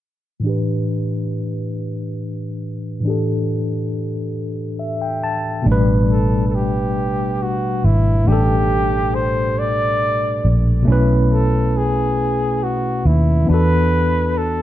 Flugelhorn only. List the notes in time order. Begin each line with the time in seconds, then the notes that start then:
6.11 A4
6.48 A4
6.55 G4
7.43 F#4
7.85 E4
8.28 G4
9.15 C5
9.59 D5
11.32 A4
11.77 G#4
12.63 F#4
13.07 E4
13.50 B4
14.38 A4